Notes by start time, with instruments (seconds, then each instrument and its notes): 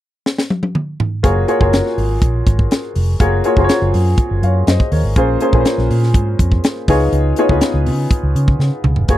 0.26 snare
0.38 snare
0.50 high tom
0.63 high tom
0.75 mid tom
1.00 floor tom
1.23 fingered electric bass F#1, grand piano A#3 F4 F#4 G#4 C#5, kick, closed hi-hat
1.48 grand piano A#3 F4 F#4 G#4 C#5, closed hi-hat
1.60 fingered electric bass F#1, grand piano A#3 F4 F#4 G#4 C#5, kick
1.73 snare, closed hi-hat
1.86 snare
1.98 fingered electric bass G#1, open hi-hat
2.21 fingered electric bass A#1, kick, closed hi-hat
2.47 fingered electric bass G#1, kick, closed hi-hat
2.59 kick
2.71 snare, closed hi-hat
2.96 fingered electric bass F1, open hi-hat
3.20 fingered electric bass F#1, grand piano A#3 F4 F#4 G#4 C#5, kick, closed hi-hat
3.44 grand piano A#3 F4 F#4 G#4 C#5, closed hi-hat
3.57 fingered electric bass F#1, grand piano A#3 F4 F#4 G#4 C5, kick
3.64 grand piano C#5
3.69 snare, closed hi-hat
3.82 fingered electric bass F#1
3.94 fingered electric bass F#2, open hi-hat
4.18 kick, closed hi-hat
4.31 fingered electric bass F#1
4.43 fingered electric bass F#2, grand piano C#5 F5, closed hi-hat
4.67 fingered electric bass F#2, grand piano C5 D#5, snare, closed hi-hat
4.80 kick
4.92 fingered electric bass D#2, grand piano A#4 C#5, open hi-hat
5.04 fingered electric bass G#1
5.16 fingered electric bass A#1, grand piano A#3 C#4 F4 G#4 C5, kick, closed hi-hat
5.40 grand piano A#3 C#4 F4 G#4 C5, closed hi-hat
5.53 fingered electric bass A#1, grand piano A#3 C#4 F4 G#4 B4, kick
5.61 grand piano C5
5.65 snare, closed hi-hat
5.78 fingered electric bass A#1, snare
5.90 fingered electric bass A#2, open hi-hat
6.03 snare
6.14 fingered electric bass G#2, kick, closed hi-hat
6.39 fingered electric bass F2, kick, closed hi-hat
6.52 kick
6.64 snare, closed hi-hat
6.88 fingered electric bass C#2, grand piano B3 D#4 F4 G#4 C#5, kick, open hi-hat
7.12 fingered electric bass C#2, closed hi-hat
7.36 grand piano B3 D#4 F4 G#4 C#5, closed hi-hat
7.49 fingered electric bass C#2, grand piano B3 D#4 F4 G#4 B4, kick
7.61 snare, closed hi-hat
7.74 fingered electric bass C#2
7.86 fingered electric bass C#3, open hi-hat
8.11 kick, closed hi-hat
8.23 fingered electric bass C#2
8.35 fingered electric bass C#3, closed hi-hat
8.48 kick
8.59 fingered electric bass C#3, snare
8.84 fingered electric bass C#2, mid tom
8.96 fingered electric bass F1, floor tom
9.08 fingered electric bass F#1, grand piano A#3 F4 F#4 G#4 C#5, kick, closed hi-hat